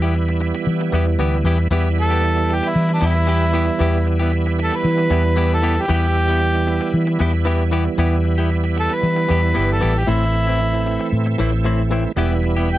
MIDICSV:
0, 0, Header, 1, 6, 480
1, 0, Start_track
1, 0, Key_signature, 1, "minor"
1, 0, Tempo, 522648
1, 1576, Time_signature, 4, 2, 24, 8
1, 11739, End_track
2, 0, Start_track
2, 0, Title_t, "Harmonica"
2, 0, Program_c, 0, 22
2, 1843, Note_on_c, 0, 69, 92
2, 2335, Note_on_c, 0, 67, 80
2, 2349, Note_off_c, 0, 69, 0
2, 2461, Note_on_c, 0, 64, 84
2, 2475, Note_off_c, 0, 67, 0
2, 2676, Note_off_c, 0, 64, 0
2, 2698, Note_on_c, 0, 62, 83
2, 2808, Note_on_c, 0, 64, 98
2, 2822, Note_off_c, 0, 62, 0
2, 3725, Note_off_c, 0, 64, 0
2, 4254, Note_on_c, 0, 69, 85
2, 4367, Note_on_c, 0, 71, 81
2, 4381, Note_off_c, 0, 69, 0
2, 5055, Note_off_c, 0, 71, 0
2, 5088, Note_on_c, 0, 69, 80
2, 5338, Note_on_c, 0, 67, 85
2, 5352, Note_off_c, 0, 69, 0
2, 5428, Note_off_c, 0, 67, 0
2, 5445, Note_on_c, 0, 67, 97
2, 6363, Note_off_c, 0, 67, 0
2, 8081, Note_on_c, 0, 69, 90
2, 8208, Note_on_c, 0, 71, 85
2, 8222, Note_off_c, 0, 69, 0
2, 8894, Note_off_c, 0, 71, 0
2, 8929, Note_on_c, 0, 69, 72
2, 9168, Note_on_c, 0, 67, 83
2, 9182, Note_off_c, 0, 69, 0
2, 9269, Note_on_c, 0, 64, 87
2, 9283, Note_off_c, 0, 67, 0
2, 10193, Note_off_c, 0, 64, 0
2, 11693, Note_on_c, 0, 79, 87
2, 11739, Note_off_c, 0, 79, 0
2, 11739, End_track
3, 0, Start_track
3, 0, Title_t, "Clean electric guitar"
3, 0, Program_c, 1, 27
3, 20, Note_on_c, 1, 67, 56
3, 33, Note_on_c, 1, 64, 51
3, 43, Note_on_c, 1, 59, 45
3, 131, Note_off_c, 1, 59, 0
3, 134, Note_off_c, 1, 64, 0
3, 134, Note_off_c, 1, 67, 0
3, 849, Note_on_c, 1, 52, 58
3, 859, Note_on_c, 1, 59, 78
3, 866, Note_on_c, 1, 64, 74
3, 874, Note_on_c, 1, 67, 81
3, 970, Note_off_c, 1, 67, 0
3, 976, Note_off_c, 1, 64, 0
3, 979, Note_off_c, 1, 52, 0
3, 981, Note_off_c, 1, 59, 0
3, 1092, Note_on_c, 1, 52, 74
3, 1098, Note_on_c, 1, 59, 88
3, 1102, Note_on_c, 1, 64, 80
3, 1107, Note_on_c, 1, 67, 95
3, 1243, Note_off_c, 1, 52, 0
3, 1246, Note_off_c, 1, 59, 0
3, 1248, Note_off_c, 1, 64, 0
3, 1251, Note_off_c, 1, 67, 0
3, 1332, Note_on_c, 1, 52, 77
3, 1340, Note_on_c, 1, 59, 90
3, 1344, Note_on_c, 1, 64, 90
3, 1348, Note_on_c, 1, 67, 95
3, 1452, Note_off_c, 1, 67, 0
3, 1456, Note_off_c, 1, 64, 0
3, 1460, Note_off_c, 1, 52, 0
3, 1462, Note_off_c, 1, 59, 0
3, 1571, Note_on_c, 1, 52, 90
3, 1578, Note_on_c, 1, 59, 84
3, 1582, Note_on_c, 1, 64, 86
3, 1587, Note_on_c, 1, 67, 98
3, 1723, Note_off_c, 1, 52, 0
3, 1726, Note_off_c, 1, 59, 0
3, 1728, Note_off_c, 1, 64, 0
3, 1731, Note_off_c, 1, 67, 0
3, 1936, Note_on_c, 1, 67, 55
3, 1945, Note_on_c, 1, 64, 42
3, 1960, Note_on_c, 1, 59, 41
3, 2046, Note_off_c, 1, 59, 0
3, 2048, Note_off_c, 1, 64, 0
3, 2053, Note_off_c, 1, 67, 0
3, 2764, Note_on_c, 1, 52, 63
3, 2770, Note_on_c, 1, 59, 61
3, 2778, Note_on_c, 1, 64, 62
3, 2786, Note_on_c, 1, 67, 72
3, 2884, Note_off_c, 1, 67, 0
3, 2889, Note_off_c, 1, 64, 0
3, 2893, Note_off_c, 1, 59, 0
3, 2897, Note_off_c, 1, 52, 0
3, 3003, Note_on_c, 1, 52, 69
3, 3006, Note_on_c, 1, 59, 70
3, 3013, Note_on_c, 1, 64, 74
3, 3018, Note_on_c, 1, 67, 81
3, 3160, Note_off_c, 1, 52, 0
3, 3161, Note_off_c, 1, 59, 0
3, 3164, Note_off_c, 1, 64, 0
3, 3167, Note_off_c, 1, 67, 0
3, 3244, Note_on_c, 1, 52, 77
3, 3250, Note_on_c, 1, 59, 84
3, 3255, Note_on_c, 1, 64, 81
3, 3260, Note_on_c, 1, 67, 83
3, 3361, Note_off_c, 1, 67, 0
3, 3366, Note_off_c, 1, 64, 0
3, 3372, Note_off_c, 1, 59, 0
3, 3377, Note_off_c, 1, 52, 0
3, 3483, Note_on_c, 1, 52, 90
3, 3493, Note_on_c, 1, 59, 87
3, 3496, Note_on_c, 1, 64, 87
3, 3503, Note_on_c, 1, 67, 99
3, 3640, Note_off_c, 1, 52, 0
3, 3644, Note_off_c, 1, 59, 0
3, 3646, Note_off_c, 1, 64, 0
3, 3649, Note_off_c, 1, 67, 0
3, 3853, Note_on_c, 1, 67, 56
3, 3865, Note_on_c, 1, 64, 48
3, 3876, Note_on_c, 1, 59, 50
3, 3962, Note_off_c, 1, 59, 0
3, 3965, Note_off_c, 1, 64, 0
3, 3969, Note_off_c, 1, 67, 0
3, 4686, Note_on_c, 1, 52, 65
3, 4694, Note_on_c, 1, 59, 62
3, 4701, Note_on_c, 1, 64, 65
3, 4709, Note_on_c, 1, 67, 58
3, 4801, Note_off_c, 1, 67, 0
3, 4807, Note_off_c, 1, 64, 0
3, 4815, Note_off_c, 1, 59, 0
3, 4819, Note_off_c, 1, 52, 0
3, 4924, Note_on_c, 1, 52, 79
3, 4931, Note_on_c, 1, 59, 69
3, 4934, Note_on_c, 1, 64, 85
3, 4941, Note_on_c, 1, 67, 86
3, 5080, Note_off_c, 1, 52, 0
3, 5083, Note_off_c, 1, 59, 0
3, 5085, Note_off_c, 1, 64, 0
3, 5088, Note_off_c, 1, 67, 0
3, 5164, Note_on_c, 1, 52, 84
3, 5173, Note_on_c, 1, 59, 79
3, 5177, Note_on_c, 1, 64, 78
3, 5179, Note_on_c, 1, 67, 79
3, 5282, Note_off_c, 1, 67, 0
3, 5288, Note_off_c, 1, 64, 0
3, 5293, Note_off_c, 1, 59, 0
3, 5298, Note_off_c, 1, 52, 0
3, 5403, Note_on_c, 1, 52, 80
3, 5410, Note_on_c, 1, 59, 79
3, 5416, Note_on_c, 1, 64, 95
3, 5422, Note_on_c, 1, 67, 88
3, 5560, Note_off_c, 1, 52, 0
3, 5563, Note_off_c, 1, 59, 0
3, 5566, Note_off_c, 1, 64, 0
3, 5569, Note_off_c, 1, 67, 0
3, 5768, Note_on_c, 1, 67, 47
3, 5780, Note_on_c, 1, 64, 46
3, 5789, Note_on_c, 1, 59, 44
3, 5879, Note_off_c, 1, 59, 0
3, 5883, Note_off_c, 1, 64, 0
3, 5887, Note_off_c, 1, 67, 0
3, 6606, Note_on_c, 1, 52, 63
3, 6614, Note_on_c, 1, 59, 72
3, 6622, Note_on_c, 1, 64, 74
3, 6629, Note_on_c, 1, 67, 73
3, 6724, Note_off_c, 1, 67, 0
3, 6731, Note_off_c, 1, 64, 0
3, 6737, Note_off_c, 1, 59, 0
3, 6738, Note_off_c, 1, 52, 0
3, 6843, Note_on_c, 1, 52, 89
3, 6848, Note_on_c, 1, 59, 85
3, 6855, Note_on_c, 1, 64, 89
3, 6860, Note_on_c, 1, 67, 93
3, 6999, Note_off_c, 1, 52, 0
3, 7002, Note_off_c, 1, 59, 0
3, 7006, Note_off_c, 1, 64, 0
3, 7008, Note_off_c, 1, 67, 0
3, 7085, Note_on_c, 1, 52, 81
3, 7091, Note_on_c, 1, 59, 93
3, 7096, Note_on_c, 1, 64, 99
3, 7098, Note_on_c, 1, 67, 102
3, 7201, Note_off_c, 1, 67, 0
3, 7210, Note_off_c, 1, 64, 0
3, 7213, Note_off_c, 1, 59, 0
3, 7218, Note_off_c, 1, 52, 0
3, 7330, Note_on_c, 1, 52, 79
3, 7337, Note_on_c, 1, 59, 94
3, 7341, Note_on_c, 1, 64, 85
3, 7345, Note_on_c, 1, 67, 92
3, 7483, Note_off_c, 1, 52, 0
3, 7486, Note_off_c, 1, 59, 0
3, 7488, Note_off_c, 1, 64, 0
3, 7491, Note_off_c, 1, 67, 0
3, 7696, Note_on_c, 1, 67, 57
3, 7705, Note_on_c, 1, 64, 50
3, 7714, Note_on_c, 1, 59, 50
3, 7806, Note_off_c, 1, 59, 0
3, 7807, Note_off_c, 1, 64, 0
3, 7813, Note_off_c, 1, 67, 0
3, 8528, Note_on_c, 1, 52, 64
3, 8536, Note_on_c, 1, 59, 65
3, 8544, Note_on_c, 1, 64, 62
3, 8551, Note_on_c, 1, 67, 66
3, 8643, Note_off_c, 1, 67, 0
3, 8653, Note_off_c, 1, 64, 0
3, 8654, Note_off_c, 1, 59, 0
3, 8659, Note_off_c, 1, 52, 0
3, 8765, Note_on_c, 1, 52, 69
3, 8771, Note_on_c, 1, 59, 82
3, 8775, Note_on_c, 1, 64, 65
3, 8783, Note_on_c, 1, 67, 75
3, 8920, Note_off_c, 1, 52, 0
3, 8923, Note_off_c, 1, 59, 0
3, 8925, Note_off_c, 1, 64, 0
3, 8929, Note_off_c, 1, 67, 0
3, 9006, Note_on_c, 1, 52, 85
3, 9012, Note_on_c, 1, 59, 78
3, 9017, Note_on_c, 1, 64, 82
3, 9022, Note_on_c, 1, 67, 88
3, 9127, Note_off_c, 1, 67, 0
3, 9135, Note_off_c, 1, 64, 0
3, 9138, Note_off_c, 1, 52, 0
3, 9141, Note_off_c, 1, 59, 0
3, 9252, Note_on_c, 1, 45, 89
3, 9257, Note_on_c, 1, 52, 90
3, 9263, Note_on_c, 1, 60, 83
3, 9266, Note_on_c, 1, 64, 82
3, 9403, Note_off_c, 1, 45, 0
3, 9406, Note_off_c, 1, 52, 0
3, 9409, Note_off_c, 1, 60, 0
3, 9410, Note_off_c, 1, 64, 0
3, 9618, Note_on_c, 1, 64, 53
3, 9630, Note_on_c, 1, 60, 41
3, 9640, Note_on_c, 1, 52, 39
3, 9732, Note_off_c, 1, 52, 0
3, 9734, Note_off_c, 1, 60, 0
3, 9734, Note_off_c, 1, 64, 0
3, 10455, Note_on_c, 1, 45, 69
3, 10463, Note_on_c, 1, 52, 70
3, 10471, Note_on_c, 1, 60, 71
3, 10478, Note_on_c, 1, 64, 76
3, 10572, Note_off_c, 1, 64, 0
3, 10581, Note_off_c, 1, 60, 0
3, 10582, Note_off_c, 1, 45, 0
3, 10583, Note_off_c, 1, 52, 0
3, 10695, Note_on_c, 1, 45, 81
3, 10702, Note_on_c, 1, 52, 80
3, 10706, Note_on_c, 1, 60, 93
3, 10710, Note_on_c, 1, 64, 88
3, 10844, Note_off_c, 1, 45, 0
3, 10848, Note_off_c, 1, 52, 0
3, 10850, Note_off_c, 1, 60, 0
3, 10851, Note_off_c, 1, 64, 0
3, 10935, Note_on_c, 1, 45, 100
3, 10940, Note_on_c, 1, 52, 83
3, 10948, Note_on_c, 1, 60, 101
3, 10950, Note_on_c, 1, 64, 103
3, 11056, Note_off_c, 1, 64, 0
3, 11061, Note_off_c, 1, 45, 0
3, 11061, Note_off_c, 1, 60, 0
3, 11064, Note_off_c, 1, 52, 0
3, 11175, Note_on_c, 1, 52, 90
3, 11181, Note_on_c, 1, 59, 87
3, 11185, Note_on_c, 1, 64, 108
3, 11191, Note_on_c, 1, 67, 106
3, 11323, Note_off_c, 1, 52, 0
3, 11327, Note_off_c, 1, 59, 0
3, 11329, Note_off_c, 1, 64, 0
3, 11332, Note_off_c, 1, 67, 0
3, 11540, Note_on_c, 1, 67, 51
3, 11551, Note_on_c, 1, 64, 45
3, 11563, Note_on_c, 1, 59, 44
3, 11652, Note_off_c, 1, 59, 0
3, 11653, Note_off_c, 1, 67, 0
3, 11656, Note_off_c, 1, 64, 0
3, 11739, End_track
4, 0, Start_track
4, 0, Title_t, "Tonewheel organ"
4, 0, Program_c, 2, 16
4, 0, Note_on_c, 2, 52, 58
4, 0, Note_on_c, 2, 55, 58
4, 0, Note_on_c, 2, 59, 59
4, 0, Note_on_c, 2, 64, 70
4, 1537, Note_off_c, 2, 52, 0
4, 1541, Note_off_c, 2, 55, 0
4, 1541, Note_off_c, 2, 59, 0
4, 1546, Note_off_c, 2, 64, 0
4, 1566, Note_on_c, 2, 52, 64
4, 1573, Note_on_c, 2, 55, 60
4, 1574, Note_on_c, 2, 59, 67
4, 1578, Note_on_c, 2, 64, 78
4, 5376, Note_off_c, 2, 52, 0
4, 5380, Note_off_c, 2, 55, 0
4, 5381, Note_off_c, 2, 59, 0
4, 5383, Note_off_c, 2, 64, 0
4, 5405, Note_on_c, 2, 55, 54
4, 5407, Note_on_c, 2, 52, 62
4, 5407, Note_on_c, 2, 59, 57
4, 5415, Note_on_c, 2, 64, 70
4, 9213, Note_off_c, 2, 55, 0
4, 9214, Note_off_c, 2, 52, 0
4, 9214, Note_off_c, 2, 59, 0
4, 9218, Note_off_c, 2, 64, 0
4, 9241, Note_on_c, 2, 52, 58
4, 9246, Note_on_c, 2, 57, 57
4, 9246, Note_on_c, 2, 60, 55
4, 9248, Note_on_c, 2, 64, 61
4, 11130, Note_off_c, 2, 52, 0
4, 11132, Note_off_c, 2, 57, 0
4, 11132, Note_off_c, 2, 60, 0
4, 11133, Note_off_c, 2, 64, 0
4, 11168, Note_on_c, 2, 52, 74
4, 11168, Note_on_c, 2, 55, 61
4, 11175, Note_on_c, 2, 59, 67
4, 11179, Note_on_c, 2, 64, 77
4, 11739, Note_off_c, 2, 52, 0
4, 11739, Note_off_c, 2, 55, 0
4, 11739, Note_off_c, 2, 59, 0
4, 11739, Note_off_c, 2, 64, 0
4, 11739, End_track
5, 0, Start_track
5, 0, Title_t, "Fingered electric bass"
5, 0, Program_c, 3, 33
5, 0, Note_on_c, 3, 40, 95
5, 472, Note_off_c, 3, 40, 0
5, 614, Note_on_c, 3, 52, 73
5, 819, Note_off_c, 3, 52, 0
5, 854, Note_on_c, 3, 40, 93
5, 1059, Note_off_c, 3, 40, 0
5, 1090, Note_on_c, 3, 38, 69
5, 1309, Note_off_c, 3, 38, 0
5, 1323, Note_on_c, 3, 40, 77
5, 1545, Note_off_c, 3, 40, 0
5, 1567, Note_on_c, 3, 40, 98
5, 2388, Note_off_c, 3, 40, 0
5, 2532, Note_on_c, 3, 52, 80
5, 2738, Note_off_c, 3, 52, 0
5, 2771, Note_on_c, 3, 40, 89
5, 3387, Note_off_c, 3, 40, 0
5, 3492, Note_on_c, 3, 40, 97
5, 4311, Note_off_c, 3, 40, 0
5, 4450, Note_on_c, 3, 52, 82
5, 4658, Note_off_c, 3, 52, 0
5, 4686, Note_on_c, 3, 40, 103
5, 5304, Note_off_c, 3, 40, 0
5, 5413, Note_on_c, 3, 40, 109
5, 6232, Note_off_c, 3, 40, 0
5, 6371, Note_on_c, 3, 52, 86
5, 6578, Note_off_c, 3, 52, 0
5, 6615, Note_on_c, 3, 40, 105
5, 7228, Note_off_c, 3, 40, 0
5, 7329, Note_on_c, 3, 40, 93
5, 8149, Note_off_c, 3, 40, 0
5, 8296, Note_on_c, 3, 52, 74
5, 8500, Note_off_c, 3, 52, 0
5, 8541, Note_on_c, 3, 40, 94
5, 8744, Note_off_c, 3, 40, 0
5, 8788, Note_on_c, 3, 31, 74
5, 8999, Note_off_c, 3, 31, 0
5, 9026, Note_on_c, 3, 33, 70
5, 9237, Note_off_c, 3, 33, 0
5, 9257, Note_on_c, 3, 33, 89
5, 10073, Note_off_c, 3, 33, 0
5, 10218, Note_on_c, 3, 45, 80
5, 10421, Note_off_c, 3, 45, 0
5, 10465, Note_on_c, 3, 33, 98
5, 11073, Note_off_c, 3, 33, 0
5, 11174, Note_on_c, 3, 28, 90
5, 11739, Note_off_c, 3, 28, 0
5, 11739, End_track
6, 0, Start_track
6, 0, Title_t, "Muted clean electric guitar strokes"
6, 137, Note_on_c, 9, 29, 37
6, 229, Note_off_c, 9, 29, 0
6, 262, Note_on_c, 9, 29, 44
6, 354, Note_off_c, 9, 29, 0
6, 373, Note_on_c, 9, 29, 46
6, 465, Note_off_c, 9, 29, 0
6, 501, Note_on_c, 9, 29, 46
6, 593, Note_off_c, 9, 29, 0
6, 745, Note_on_c, 9, 29, 46
6, 836, Note_off_c, 9, 29, 0
6, 981, Note_on_c, 9, 29, 55
6, 1073, Note_off_c, 9, 29, 0
6, 1463, Note_on_c, 9, 29, 47
6, 1554, Note_off_c, 9, 29, 0
6, 1809, Note_on_c, 9, 29, 38
6, 1900, Note_off_c, 9, 29, 0
6, 2175, Note_on_c, 9, 29, 43
6, 2267, Note_off_c, 9, 29, 0
6, 2290, Note_on_c, 9, 29, 35
6, 2382, Note_off_c, 9, 29, 0
6, 2415, Note_on_c, 9, 29, 43
6, 2507, Note_off_c, 9, 29, 0
6, 2655, Note_on_c, 9, 29, 43
6, 2747, Note_off_c, 9, 29, 0
6, 2895, Note_on_c, 9, 29, 45
6, 2987, Note_off_c, 9, 29, 0
6, 3372, Note_on_c, 9, 29, 52
6, 3464, Note_off_c, 9, 29, 0
6, 3732, Note_on_c, 9, 29, 42
6, 3824, Note_off_c, 9, 29, 0
6, 4098, Note_on_c, 9, 29, 44
6, 4190, Note_off_c, 9, 29, 0
6, 4212, Note_on_c, 9, 29, 38
6, 4304, Note_off_c, 9, 29, 0
6, 4337, Note_on_c, 9, 29, 45
6, 4429, Note_off_c, 9, 29, 0
6, 4574, Note_on_c, 9, 29, 42
6, 4666, Note_off_c, 9, 29, 0
6, 4812, Note_on_c, 9, 29, 45
6, 4904, Note_off_c, 9, 29, 0
6, 5293, Note_on_c, 9, 29, 45
6, 5385, Note_off_c, 9, 29, 0
6, 5649, Note_on_c, 9, 29, 38
6, 5741, Note_off_c, 9, 29, 0
6, 5885, Note_on_c, 9, 29, 36
6, 5977, Note_off_c, 9, 29, 0
6, 6016, Note_on_c, 9, 29, 47
6, 6108, Note_off_c, 9, 29, 0
6, 6127, Note_on_c, 9, 29, 42
6, 6219, Note_off_c, 9, 29, 0
6, 6253, Note_on_c, 9, 29, 51
6, 6345, Note_off_c, 9, 29, 0
6, 6495, Note_on_c, 9, 29, 44
6, 6586, Note_off_c, 9, 29, 0
6, 6735, Note_on_c, 9, 29, 47
6, 6827, Note_off_c, 9, 29, 0
6, 7212, Note_on_c, 9, 29, 50
6, 7304, Note_off_c, 9, 29, 0
6, 7568, Note_on_c, 9, 29, 41
6, 7660, Note_off_c, 9, 29, 0
6, 7813, Note_on_c, 9, 29, 34
6, 7905, Note_off_c, 9, 29, 0
6, 7934, Note_on_c, 9, 29, 43
6, 8025, Note_off_c, 9, 29, 0
6, 8051, Note_on_c, 9, 29, 36
6, 8143, Note_off_c, 9, 29, 0
6, 8175, Note_on_c, 9, 29, 46
6, 8267, Note_off_c, 9, 29, 0
6, 8417, Note_on_c, 9, 29, 41
6, 8508, Note_off_c, 9, 29, 0
6, 8654, Note_on_c, 9, 29, 38
6, 8746, Note_off_c, 9, 29, 0
6, 9138, Note_on_c, 9, 29, 47
6, 9230, Note_off_c, 9, 29, 0
6, 9495, Note_on_c, 9, 29, 40
6, 9587, Note_off_c, 9, 29, 0
6, 9738, Note_on_c, 9, 29, 34
6, 9829, Note_off_c, 9, 29, 0
6, 9865, Note_on_c, 9, 29, 42
6, 9956, Note_off_c, 9, 29, 0
6, 9976, Note_on_c, 9, 29, 47
6, 10068, Note_off_c, 9, 29, 0
6, 10098, Note_on_c, 9, 29, 52
6, 10190, Note_off_c, 9, 29, 0
6, 10342, Note_on_c, 9, 29, 45
6, 10434, Note_off_c, 9, 29, 0
6, 10583, Note_on_c, 9, 29, 50
6, 10674, Note_off_c, 9, 29, 0
6, 11067, Note_on_c, 9, 29, 51
6, 11158, Note_off_c, 9, 29, 0
6, 11419, Note_on_c, 9, 29, 45
6, 11510, Note_off_c, 9, 29, 0
6, 11658, Note_on_c, 9, 29, 36
6, 11739, Note_off_c, 9, 29, 0
6, 11739, End_track
0, 0, End_of_file